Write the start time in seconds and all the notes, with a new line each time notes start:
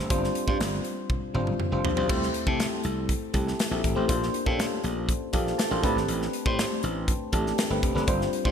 Already playing: A3 C4 D4 G4 B4 C5 E5
0.10 G1 G3 C4 D4 F4 C5, kick, closed hi-hat
0.24 snare
0.35 closed hi-hat
0.47 G2 G3 C4 D4 F4 C5, kick
0.60 G1, snare, closed hi-hat
0.84 closed hi-hat
1.10 kick, high tom
1.34 G1 G3 C4 D4 F4 C5, mid tom
1.47 mid tom
1.60 mid tom
1.71 F1 G3 C4 D4 F4 C5
1.84 A#1, floor tom
1.97 B1 G3 C4 D4 F4 C5, floor tom
2.09 C2 A3 C4 E4 G4 C5, kick, crash
2.23 snare
2.34 closed hi-hat
2.47 C3 A3 C4 E4 G4 A4, kick
2.60 snare, closed hi-hat
2.84 C2, closed hi-hat
3.09 kick, closed hi-hat
3.33 C2 A3 C4 E4 G4 A4, kick, closed hi-hat
3.47 snare
3.59 snare, closed hi-hat
3.71 A#1 A3 C4 E4 G4 A4
3.84 G#1, kick, closed hi-hat
3.95 A1 A3 C4 E4 G4 C5
4.08 A#1 A#3 D4 F4 G4 C5, kick, closed hi-hat
4.23 snare
4.34 closed hi-hat
4.46 A#2 A#3 C#4 F4 G4 A4, kick
4.52 D4
4.59 snare, closed hi-hat
4.84 A#1, closed hi-hat
5.09 kick, closed hi-hat
5.33 A#1 A#3 D4 F4 G4 A4 F5, kick, closed hi-hat
5.47 snare
5.58 A5, snare, closed hi-hat
5.70 A1 A#3 D4 F4 G4 C5
5.83 A1 A3 C4 D4 G4 B4, kick, closed hi-hat
5.96 G#1, snare
6.08 A1, closed hi-hat
6.22 snare
6.33 closed hi-hat
6.45 A2 A3 C4 D4 G4 C5, kick
6.59 snare, closed hi-hat
6.83 A1, closed hi-hat
7.08 kick, closed hi-hat
7.32 A1 A3 C4 D4 G4 A4, kick, closed hi-hat
7.46 snare
7.58 snare, closed hi-hat
7.69 G1 A3 C4 D4 G4 B4
7.83 F1, kick, closed hi-hat
7.94 F#1 A3 C4 D4 G4 B4, snare
8.07 G1 G3 C4 D4 F4 C5, kick, closed hi-hat
8.21 snare
8.33 closed hi-hat
8.44 G2 G3 C4 D4 F4 C5, kick